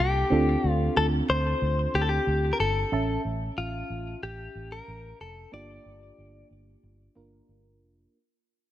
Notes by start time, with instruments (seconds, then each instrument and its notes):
Already playing: fm electric piano A#3 D4 F4 A4
0.00 fingered electric bass C2, clean electric guitar G4
0.30 fingered electric bass D2, fm electric piano C4 D4 F4 A4
0.64 fingered electric bass D2
0.70 clean electric guitar F4
0.96 fingered electric bass D2, clean electric guitar A4
1.29 fingered electric bass D2, clean electric guitar C5
1.62 fingered electric bass D2
1.94 fingered electric bass D2, clean electric guitar G4
2.02 clean electric guitar A4
2.09 clean electric guitar G4
2.27 fingered electric bass D2
2.53 clean electric guitar A#4
2.60 fingered electric bass G1, clean electric guitar A4
2.92 fingered electric bass A1, fm electric piano C#4 E5 A5
3.25 fingered electric bass A1
3.57 fingered electric bass A1, clean electric guitar F4
3.90 fingered electric bass A1
4.23 fingered electric bass A1, clean electric guitar G4
4.55 fingered electric bass A1
4.72 clean electric guitar A#4
4.88 fingered electric bass A1
5.20 fingered electric bass F1, clean electric guitar A4
5.52 fingered electric bass G1, fm electric piano A#3 D4 F4 G4, clean electric guitar D5
5.86 fingered electric bass G1
6.18 fingered electric bass G1
6.50 fingered electric bass G1
6.83 fingered electric bass G1
7.15 fingered electric bass G1, fm electric piano A#3 D4 F4 A#4
7.49 fingered electric bass G1
7.81 fingered electric bass F1